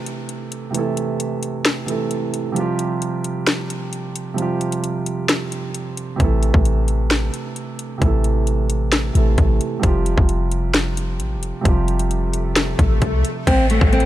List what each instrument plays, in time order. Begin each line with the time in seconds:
Already playing: grand piano C3 E3 A3 E4 A4
0.06 closed hi-hat
0.29 closed hi-hat
0.52 closed hi-hat
0.71 grand piano C3 E3 A3, closed hi-hat
0.77 grand piano E4 A4
0.97 closed hi-hat
1.20 closed hi-hat
1.43 closed hi-hat
1.65 snare, closed hi-hat
1.86 grand piano C3 E3 A3 E4 A4, closed hi-hat
2.11 closed hi-hat
2.34 closed hi-hat
2.52 grand piano C3 F3 G3
2.56 grand piano F4 G4, closed hi-hat
2.79 closed hi-hat
3.02 closed hi-hat
3.24 closed hi-hat
3.47 snare, closed hi-hat
3.70 closed hi-hat
3.93 closed hi-hat
4.16 closed hi-hat
4.34 grand piano C3 F3
4.38 grand piano G3 F4 G4, closed hi-hat
4.61 closed hi-hat, open hi-hat
4.72 closed hi-hat
4.84 closed hi-hat
5.06 closed hi-hat
5.29 snare, closed hi-hat
5.52 closed hi-hat
5.74 closed hi-hat
5.97 closed hi-hat
6.16 808-style bass A1, grand piano C3 E3 A3, kick, closed hi-hat
6.22 grand piano E4 A4
6.43 closed hi-hat
6.54 808-style bass A1, kick
6.65 closed hi-hat
6.88 closed hi-hat
7.11 snare, closed hi-hat
7.34 closed hi-hat
7.56 closed hi-hat
7.79 closed hi-hat
7.98 808-style bass A1, grand piano C3 E3 A3, kick, closed hi-hat
8.04 grand piano E4 A4
8.24 closed hi-hat
8.47 closed hi-hat
8.70 closed hi-hat
8.92 snare, closed hi-hat
9.13 808-style bass A1, grand piano C3 E3 A3 E4 A4, closed hi-hat
9.38 808-style bass A1, kick, closed hi-hat
9.61 closed hi-hat
9.79 grand piano C3 F3 G3, closed hi-hat
9.83 808-style bass F1, grand piano F4 G4, kick, swell
10.06 closed hi-hat
10.18 808-style bass F1, kick
10.29 closed hi-hat
10.52 closed hi-hat
10.74 snare, closed hi-hat
10.97 closed hi-hat
11.20 808-style bass A1, closed hi-hat
11.37 808-style bass F1
11.43 closed hi-hat
11.61 grand piano C3 F3 G3
11.65 808-style bass F1, grand piano F4 G4, kick, closed hi-hat
11.88 closed hi-hat, open hi-hat
11.99 closed hi-hat
12.11 closed hi-hat
12.33 closed hi-hat
12.56 snare, closed hi-hat
12.79 808-style bass A1, kick, closed hi-hat
13.02 808-style bass C2, kick, closed hi-hat
13.25 closed hi-hat
13.47 808-style bass A1, nylon-string guitar C4, kick, closed hi-hat, downlifter
13.70 nylon-string guitar A3, closed hi-hat
13.81 808-style bass A1, kick
13.93 nylon-string guitar C4, closed hi-hat
14.00 closed hi-hat